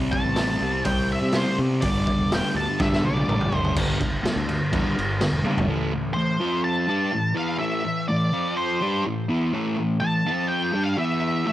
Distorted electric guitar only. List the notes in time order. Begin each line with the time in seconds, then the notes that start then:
Already playing: C3 G3 C4
0.37 C3 G3 C4
0.62 C3 G3 C4
0.85 C3 G3 C4
1.35 C3 G3 C4
1.59 C3 G3 C4
1.84 G2 D3 G3
2.31 G2 D3 G3
2.56 G2 D3 G3
2.79 G2 D3 G3
3.28 G2 D3 G3
3.53 G2 D3 G3
3.77 G2 D3 G3
4.00 G2 D3
4.23 G2 D3
4.48 G2 D3
4.72 G2 D3 G3
4.96 G2 D3
5.20 G2 D3
5.44 G2 D3 G3
5.68 A2 E3 A3
5.93 A2 E3
6.16 A2 E3
6.40 F3 C4 F4
6.88 G3 D4 G4
7.12 A2 E3
7.34 E3 B3 E4
7.59 A2 E3 A3
7.84 A2 E3
8.09 A2 E3
8.33 F3 C4 F4
8.81 G3 D4 G4
9.06 A2 E3
9.29 E3 B3 E4
9.54 A2 E3 A3
9.78 A2 E3
10.02 A2 E3
10.26 F3 C4 F4
10.73 G3 D4 G4
10.97 E3 B3 E4
11.46 A2 E3 A3